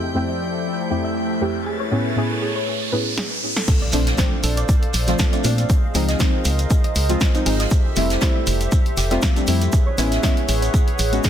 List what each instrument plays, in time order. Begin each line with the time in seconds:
Already playing: synth stab F2 A3 C4 E4 G4, analog synth pad F3 G4 A4 C5 E5, ambient pad F3 E4 D5, violin section G5 G6, riser
0.06 ambient pad A3
0.14 synth stab F2 A3 C4 E4 G4, synth arpeggio sound G4
0.29 synth arpeggio sound E5
0.90 synth stab F2 A3 C4 E4 G4, synth arpeggio sound G4
1.04 synth arpeggio sound E5
1.41 synth stab F2 A3 C4 E4 G4
1.66 analog synth pad A3 E4 B4 C#5, synth arpeggio sound G#4, violin section A4 A6
1.80 synth arpeggio sound C#5
1.91 synth stab A2 B3 C#4 E4 G#4
2.16 synth stab A2 B3 C#4 E4 G#4
2.25 ambient pad C#5
2.42 synth arpeggio sound G#4
2.56 synth arpeggio sound C#5
2.92 synth stab A2 B3 C#4 E4 G#4, synth arpeggio sound B4
3.17 synth arpeggio sound G#4, snare
3.56 synth arpeggio sound A4, snare
3.68 synth arpeggio sound A4, analog synth pad A4 C5 D5 F5, kick, closed hi-hat, crash, impact, shekere, shaker
3.82 synth arpeggio sound D5
3.91 fm bass A#1, synth stab F3 A3 C4 D4, ambient pad D5, snare, open hi-hat, shekere, shaker
4.07 snare, closed hi-hat, shekere
4.17 synth stab F3 A3 C4 D4, kick, snare, closed hi-hat, shekere, shaker
4.43 fm bass A#1, synth arpeggio sound A4, open hi-hat, shekere, shaker
4.57 synth arpeggio sound D5, closed hi-hat, shekere
4.68 kick, closed hi-hat, shekere, shaker
4.83 closed hi-hat
4.93 fm bass A#1, snare, open hi-hat, shekere, shaker
5.07 synth stab F3 A3 C4 F4, snare, closed hi-hat, shekere
5.19 synth arpeggio sound A4, kick, snare, closed hi-hat, shaker, shekere
5.32 synth stab F3 A3 C4 D4, synth arpeggio sound D5, closed hi-hat, shekere
5.44 fm bass A#2, synth stab F3 A3 C4 D4, open hi-hat, shekere, shaker
5.58 closed hi-hat, shekere
5.69 ambient pad F4, analog synth pad G#4 C5 D#5, kick, closed hi-hat, shekere, shaker
5.81 ambient pad A#4
5.94 fm bass C#2, synth stab F3 G#3 C4 D#4, synth arpeggio sound G#4, ambient pad D#5, snare, open hi-hat, shekere, shaker
6.09 synth arpeggio sound D#5, snare, closed hi-hat, shekere
6.19 synth stab F3 G#3 C4 D#4, kick, snare, closed hi-hat, shaker, shekere
6.45 fm bass C#2, open hi-hat, shekere, shaker
6.59 closed hi-hat, shekere
6.70 synth arpeggio sound G#4, kick, closed hi-hat, shekere, shaker
6.84 synth arpeggio sound D#5, closed hi-hat
6.95 fm bass C#2, open hi-hat, shaker, shekere
7.09 synth stab F3 G#3 C4 F4, closed hi-hat, shekere
7.21 kick, snare, closed hi-hat, shaker, shekere
7.34 synth stab F3 G#3 C4 D#4, closed hi-hat, shekere
7.46 fm bass G#1, synth stab F3 G#3 C4 D#4, synth arpeggio sound G#4, open hi-hat, shekere
7.59 synth arpeggio sound D#5, snare, closed hi-hat, shekere
7.70 analog synth pad G4 A4 E5, ambient pad G4, kick, closed hi-hat, shaker, shekere
7.85 ambient pad C5
7.94 fm bass F1, synth stab G3 A3 C4 E4, ambient pad E5, snare, open hi-hat, shaker, shekere
8.10 snare, closed hi-hat, shekere
8.21 synth stab G3 A3 C4 E4, synth arpeggio sound G4, kick, snare, closed hi-hat, shekere, shaker
8.35 synth arpeggio sound E5
8.47 fm bass F1, open hi-hat, shekere, shaker
8.61 closed hi-hat, shekere
8.72 kick, closed hi-hat, shekere, shaker
8.86 closed hi-hat
8.97 fm bass F1, synth arpeggio sound G4, snare, open hi-hat, shaker, shekere
9.11 synth stab G3 A3 C4 F4, synth arpeggio sound E5, snare, closed hi-hat, shekere
9.22 kick, snare, closed hi-hat, shaker, shekere
9.36 synth stab G3 A3 C4 D4, closed hi-hat, shekere
9.47 fm bass F2, synth stab G3 A3 C4 E4, open hi-hat, shaker, shekere
9.62 closed hi-hat, shekere
9.72 synth arpeggio sound G#4, ambient pad G#4, analog synth pad G#4 B4 C#5, kick, closed hi-hat, shaker, shekere
9.83 ambient pad C#5, synth arpeggio sound C#5
9.90 ambient pad F#5
9.98 fm bass A1, synth stab G#3 B3 C#4 E4, snare, open hi-hat, shaker, shekere
10.12 snare, closed hi-hat, shekere
10.22 synth stab G#3 B3 C#4 E4, kick, snare, closed hi-hat, shaker, shekere
10.37 closed hi-hat
10.48 fm bass A1, synth arpeggio sound G#4, open hi-hat, shaker, shekere
10.62 synth arpeggio sound C#5, closed hi-hat, shekere
10.74 kick, closed hi-hat, shekere, shaker
10.88 closed hi-hat
10.98 fm bass A1, open hi-hat, shaker, shekere
11.12 synth stab G#3 B3 C#4 F#4, closed hi-hat, shekere
11.24 synth arpeggio sound G#4, kick, snare, closed hi-hat, shaker, shekere